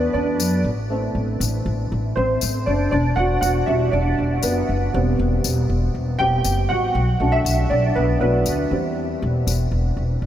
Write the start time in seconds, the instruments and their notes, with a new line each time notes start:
Already playing: upright piano A3 B3 D4 F#4 B4 D5
0.13 upright bass E2, upright piano D4 D5
0.40 upright bass F#2, tambourine
0.64 upright bass A1
0.90 upright piano A3 C4 E4
1.15 upright bass A1
1.40 upright bass A1, tambourine
1.66 upright bass A1
1.92 upright bass A1
2.16 upright bass A1, upright piano C4 C5
2.41 upright bass A1, tambourine
2.66 upright bass F#1, upright piano D4 D5
2.91 upright bass E1, upright piano D4 D5
3.16 upright bass E1, upright piano F#4 F#5
3.41 upright bass E1, upright piano F#4 F#5, tambourine
3.66 upright bass E1, upright piano G3 D4 E4 F#4 E5
3.91 upright bass E1, upright piano D4 D5
4.19 upright bass E1
4.43 upright bass F#1, upright piano B3 B4, tambourine
4.69 upright bass F#1
4.94 upright bass E1, upright piano G3 B3 C4
5.19 upright bass E1
5.44 upright bass E1, tambourine
5.69 upright bass E1
5.95 upright bass E1
6.19 upright bass E1, upright piano G3 B3 C4 G4 G5
6.44 upright bass F#1, tambourine
6.69 upright bass A1, upright piano F#4 F#5
6.95 upright bass B1
7.20 upright bass B1, upright piano F#3 A3 D4
7.32 upright piano E4 E5
7.45 upright bass B1, tambourine
7.70 upright bass B1, upright piano D4 D5
7.95 upright bass B1, upright piano B3 B4
8.21 upright bass B1, upright piano F#3 A3 B3 D4 B4
8.46 upright bass D2, tambourine
8.71 upright bass E2, upright piano E3 G3 C4
9.22 upright bass E1
9.47 upright bass E1, tambourine
9.71 upright bass E1
9.97 upright bass E1
10.22 upright bass E1